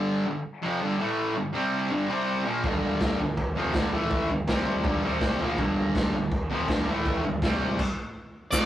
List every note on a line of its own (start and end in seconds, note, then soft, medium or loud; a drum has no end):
0.00 0.25 G2 medium
0.00 0.25 D3 loud
0.00 0.26 G3 loud
0.26 0.40 G2 medium
0.26 0.41 D3 medium
0.62 0.80 F2 medium
0.62 0.80 C3 medium
0.62 0.81 F3 loud
0.81 0.98 G2 medium
0.81 0.98 D3 medium
0.81 0.99 G3 loud
0.98 1.35 A2 medium
0.98 1.35 E3 medium
0.98 1.36 A3 loud
1.36 1.50 G2 medium
1.36 1.50 D3 medium
1.53 1.90 C3 medium
1.53 1.90 G3 medium
1.53 1.91 C4 medium
1.90 2.08 G2 loud
1.90 2.08 D3 loud
1.90 2.08 G3 loud
2.08 2.44 C3 medium
2.08 2.45 G3 medium
2.08 2.46 C4 medium
2.44 2.63 A#2 medium
2.44 2.64 F3 medium
2.44 2.64 A#3 medium
2.64 3.18 G2 medium
2.64 3.18 D3 medium
2.64 3.19 G3 loud
2.64 kick loud
2.64 floor tom medium
2.82 floor tom medium
3.00 kick loud
3.00 snare loud
3.00 floor tom medium
3.19 3.34 G2 medium
3.19 3.34 D3 medium
3.19 floor tom medium
3.37 kick loud
3.37 floor tom medium
3.55 3.73 F2 medium
3.55 3.74 C3 loud
3.55 3.75 F3 medium
3.55 floor tom medium
3.73 3.92 G2 medium
3.73 3.92 D3 loud
3.73 3.93 G3 medium
3.73 kick loud
3.73 snare loud
3.73 floor tom medium
3.92 4.29 A2 medium
3.92 4.30 E3 medium
3.92 4.30 A3 medium
3.92 floor tom medium
4.10 kick loud
4.10 floor tom medium
4.29 4.45 G2 medium
4.29 4.45 D3 medium
4.29 floor tom medium
4.47 4.84 C3 medium
4.47 4.84 G3 medium
4.47 4.85 C4 loud
4.47 kick loud
4.47 snare loud
4.47 floor tom medium
4.66 floor tom medium
4.83 5.02 G2 loud
4.83 5.03 D3 loud
4.83 5.03 G3 loud
4.83 kick loud
4.83 floor tom medium
5.02 5.40 C3 medium
5.02 5.40 G3 medium
5.02 5.40 C4 medium
5.02 floor tom medium
5.20 kick loud
5.20 snare loud
5.20 floor tom medium
5.40 5.58 A#2 medium
5.40 5.58 F3 medium
5.40 5.59 A#3 loud
5.40 floor tom medium
5.58 6.12 G2 medium
5.58 6.13 D3 loud
5.58 6.14 G3 loud
5.58 kick loud
5.58 floor tom medium
5.76 floor tom medium
5.95 kick loud
5.95 snare loud
5.95 floor tom medium
6.13 6.28 G2 medium
6.13 6.29 D3 medium
6.13 floor tom medium
6.32 kick loud
6.32 floor tom medium
6.50 6.68 F2 medium
6.50 6.69 C3 medium
6.50 6.69 F3 medium
6.50 floor tom medium
6.68 6.86 G2 medium
6.68 6.85 D3 medium
6.68 6.86 G3 loud
6.68 kick loud
6.68 snare loud
6.68 floor tom medium
6.86 7.23 A2 medium
6.86 7.23 E3 medium
6.86 7.24 A3 loud
6.86 floor tom medium
7.05 kick loud
7.05 floor tom medium
7.24 7.39 G2 medium
7.24 7.39 D3 medium
7.24 floor tom medium
7.42 7.79 C3 medium
7.42 7.79 G3 loud
7.42 7.80 C4 medium
7.42 kick loud
7.42 snare loud
7.42 floor tom medium
7.61 floor tom medium
7.79 kick loud
7.79 crash loud
8.51 8.66 F2 medium
8.51 8.66 D5 medium
8.51 kick loud
8.51 snare loud
8.51 crash loud
8.51 crash medium
8.51 shaker medium
8.55 8.66 C3 medium
8.55 8.66 F3 loud